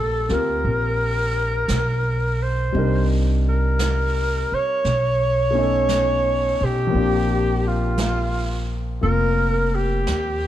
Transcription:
0.00 0.27 A#1 soft
0.00 2.71 G3 soft
0.00 2.73 A#3 soft
0.00 2.74 D4 soft
0.00 0.28 F4 soft
0.00 0.35 A4 medium
0.29 0.63 D2 medium
0.29 2.74 C4 soft
0.29 2.75 F4 soft
0.29 2.75 G4 soft
0.29 2.76 A#4 soft
0.29 snare soft
0.34 2.44 A#4 medium
0.64 1.66 A#1 medium
0.64 brush sweep soft
1.68 2.70 B1 medium
1.68 brush sweep soft
1.68 snare soft
1.68 hi-hat pedal soft
2.43 3.10 C5 medium
2.72 4.47 C2 medium
2.72 4.84 C3 soft
2.72 4.83 G3 soft
2.72 4.85 D4 soft
2.72 4.85 D#4 soft
2.72 brush sweep soft
2.78 4.86 A#4 soft
3.49 4.56 A#4 medium
3.79 brush sweep soft
3.79 snare soft
3.79 hi-hat pedal soft
4.52 6.66 C#5 medium
4.52 muted upright bass stroke soft
4.85 6.56 B1 medium
4.85 brush sweep soft
4.85 snare soft
5.51 6.90 A3 soft
5.51 6.92 B3 soft
5.55 6.92 C#4 soft
5.55 6.94 D#4 soft
5.61 6.95 A4 soft
5.89 brush sweep soft
5.89 snare soft
5.89 hi-hat pedal soft
6.61 6.91 B1 medium
6.65 7.69 G4 medium
6.87 10.47 F3 soft
6.87 9.00 A#3 soft
6.92 8.98 A#1 medium
6.92 9.01 C4 soft
6.92 10.47 D4 soft
6.92 brush sweep soft
6.98 10.47 G4 soft
7.67 8.70 F4 medium
7.98 brush sweep soft
7.98 snare soft
7.98 hi-hat pedal soft
9.01 10.03 F1 medium
9.01 10.47 A#3 soft
9.01 10.47 C4 soft
9.01 10.47 F4 soft
9.01 9.77 A#4 medium
9.01 brush sweep soft
9.75 10.47 G4 medium
10.07 10.47 D#2 medium
10.07 brush sweep soft
10.07 snare soft
10.07 hi-hat pedal soft

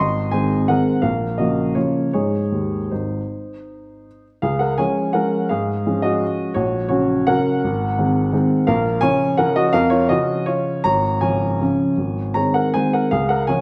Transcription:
0.00 0.32 G#1 medium
0.00 0.31 D#5 medium
0.00 0.33 C6 medium
0.31 0.66 D#3 soft
0.31 0.66 G#3 soft
0.31 0.66 C4 soft
0.31 0.67 C5 medium
0.31 0.68 G#5 medium
0.68 1.00 D#3 soft
0.68 1.01 G#3 soft
0.68 1.01 C4 soft
0.68 1.01 A#4 medium
0.68 1.03 F#5 medium
1.02 1.38 A#1 soft
1.02 1.36 A#4 soft
1.02 1.38 F5 medium
1.38 1.72 C#3 soft
1.38 1.72 F3 soft
1.38 1.73 A#3 soft
1.38 1.73 F#4 soft
1.38 1.75 D#5 medium
1.75 2.09 C#3 soft
1.75 2.10 F3 soft
1.75 2.10 A#3 soft
1.75 2.11 F4 soft
1.75 2.12 C#5 medium
2.13 2.41 G#2 soft
2.13 2.44 G#3 soft
2.13 2.45 D#4 soft
2.13 2.88 G#4 soft
2.13 2.91 C#5 medium
2.52 2.79 D#2 soft
2.91 3.19 G#1 soft
2.91 4.21 D#4 soft
2.91 4.25 C5 soft
4.42 4.77 C#2 soft
4.42 4.59 G#4 medium
4.42 4.60 F5 medium
4.59 4.77 A#4 medium
4.59 4.78 F#5 medium
4.78 5.11 F3 soft
4.78 5.11 G#3 soft
4.78 5.12 C#4 soft
4.78 5.12 C#5 medium
4.78 5.14 G#5 medium
5.13 5.47 F3 soft
5.13 5.47 G#3 soft
5.13 5.47 C#4 soft
5.13 5.48 A#4 medium
5.13 5.50 F#5 medium
5.49 5.85 G#2 soft
5.49 6.00 G#4 medium
5.49 6.03 F5 medium
5.86 6.52 F3 soft
5.86 6.52 G#3 soft
5.86 6.52 C#4 soft
6.02 6.52 F#4 medium
6.02 6.55 D#5 medium
6.54 6.89 A#1 soft
6.54 6.87 F#4 medium
6.54 6.87 C#5 medium
6.88 7.25 C#3 soft
6.88 7.25 F#3 soft
6.88 7.25 C#4 soft
6.88 7.26 F#4 medium
6.88 7.28 C#5 medium
7.27 7.60 C#3 soft
7.27 7.60 F#3 soft
7.27 7.60 C#4 soft
7.27 8.62 A#4 medium
7.27 8.66 F#5 medium
7.64 7.97 G#1 medium
7.98 8.29 D#3 soft
7.98 8.29 G#3 soft
7.98 8.30 C4 soft
8.33 8.64 D#3 soft
8.33 8.64 G#3 soft
8.33 8.64 C4 soft
8.67 9.01 A#1 medium
8.67 9.00 A#4 medium
8.67 9.01 F5 medium
9.01 9.34 C#3 soft
9.01 9.34 F3 soft
9.01 9.35 C#4 medium
9.01 9.35 C#5 medium
9.01 9.37 G#5 loud
9.37 9.70 C#3 soft
9.37 9.70 F3 soft
9.37 9.70 C#4 medium
9.37 9.55 A#4 medium
9.37 9.55 F#5 medium
9.56 9.72 F#4 medium
9.56 9.73 D#5 medium
9.73 10.07 F2 medium
9.73 9.89 A#4 medium
9.73 9.90 F5 loud
9.90 10.08 F4 medium
9.90 10.08 C#5 medium
10.09 10.80 C#3 soft
10.09 10.81 F3 soft
10.09 10.81 C#4 soft
10.09 10.44 F#4 medium
10.09 10.46 D#5 medium
10.46 10.81 F4 medium
10.46 10.83 C#5 medium
10.84 11.21 G#1 medium
10.84 11.19 C#5 medium
10.84 11.21 A#5 medium
11.21 11.57 C#3 soft
11.21 11.57 F3 soft
11.21 11.57 C#4 soft
11.21 12.31 C#5 medium
11.21 12.35 G#5 medium
11.61 11.94 C#3 soft
11.61 11.95 F3 soft
11.61 11.95 C#4 soft
11.97 12.34 G#1 soft
12.34 12.70 D#3 soft
12.34 12.71 G#3 soft
12.34 12.71 C4 soft
12.34 12.53 C#5 medium
12.34 12.54 A#5 medium
12.54 12.73 A#4 soft
12.54 12.74 F#5 medium
12.74 13.09 D#3 soft
12.74 13.09 G#3 soft
12.74 13.09 C4 soft
12.74 12.93 C5 medium
12.74 12.94 G#5 medium
12.93 13.11 A#4 medium
12.93 13.12 F#5 medium
13.11 13.48 C#2 medium
13.11 13.29 G#4 medium
13.11 13.30 F5 medium
13.29 13.47 A#4 medium
13.29 13.48 F#5 medium
13.47 13.61 C#3 soft
13.47 13.61 F3 soft
13.47 13.61 C#4 soft
13.47 13.61 C#5 medium
13.47 13.61 G#5 medium

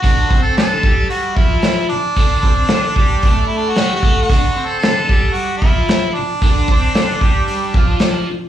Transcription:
0.02 0.29 D3 loud
0.02 0.30 D4 medium
0.02 0.40 F#4 loud
0.02 kick loud
0.02 open hi-hat soft
0.28 0.55 C4 medium
0.28 0.56 C5 medium
0.28 kick medium
0.42 0.55 A4 medium
0.57 0.83 D3 medium
0.57 0.84 D4 medium
0.57 1.07 A4 loud
0.57 snare loud
0.57 open hi-hat soft
0.83 1.36 G3 medium
0.83 1.37 G4 medium
0.83 kick loud
1.10 1.38 F#4 medium
1.10 open hi-hat medium
1.36 1.89 F3 medium
1.36 1.88 E4 medium
1.36 1.90 F4 loud
1.36 kick loud
1.62 snare medium
1.62 open hi-hat medium
1.89 3.48 D4 loud
1.89 muted overdriven electric guitar stroke medium
2.16 2.43 D3 medium
2.16 2.43 D4 loud
2.16 kick medium
2.16 open hi-hat medium
2.43 2.70 C4 medium
2.43 2.70 C5 medium
2.43 kick loud
2.68 2.96 D3 medium
2.68 2.96 D4 medium
2.68 snare loud
2.68 open hi-hat medium
2.96 3.23 G3 medium
2.96 3.23 G4 loud
2.96 kick medium
3.22 3.76 A3 medium
3.22 3.77 A4 loud
3.22 kick loud
3.22 open hi-hat medium
3.46 3.59 E4 medium
3.58 3.72 D4 medium
3.70 3.94 F#4 medium
3.76 4.02 G3 medium
3.76 4.03 G4 loud
3.76 snare loud
3.76 open hi-hat medium
3.95 4.21 F#4 medium
4.03 4.29 A3 medium
4.03 4.29 A4 medium
4.03 kick medium
4.22 4.68 F#4 medium
4.30 4.55 D3 medium
4.30 4.56 D4 loud
4.30 kick medium
4.30 open hi-hat medium
4.56 4.82 C4 medium
4.56 4.82 C5 medium
4.66 4.78 A4 medium
4.79 5.34 A4 loud
4.79 open hi-hat soft
4.83 5.08 D3 medium
4.83 5.09 D4 loud
4.83 snare loud
5.09 5.62 G3 medium
5.09 5.62 G4 medium
5.09 kick loud
5.33 5.56 F#4 medium
5.33 open hi-hat medium
5.57 6.15 E4 medium
5.62 6.15 F3 medium
5.62 6.16 F4 medium
5.62 kick loud
5.89 snare loud
5.89 open hi-hat soft
6.14 8.26 D4 medium
6.18 muted overdriven electric guitar stroke medium
6.42 6.68 D3 medium
6.42 6.68 D4 loud
6.42 kick loud
6.42 open hi-hat medium
6.68 6.95 C4 medium
6.68 6.95 C5 loud
6.68 kick loud
6.95 7.21 D3 medium
6.95 7.22 D4 medium
6.95 snare loud
6.95 open hi-hat medium
7.21 7.74 G3 medium
7.21 7.74 G4 medium
7.21 kick loud
7.48 open hi-hat medium
7.74 8.27 F3 medium
7.74 8.28 F4 loud
7.74 kick loud
7.99 snare loud
7.99 open hi-hat medium
8.28 muted overdriven electric guitar stroke medium

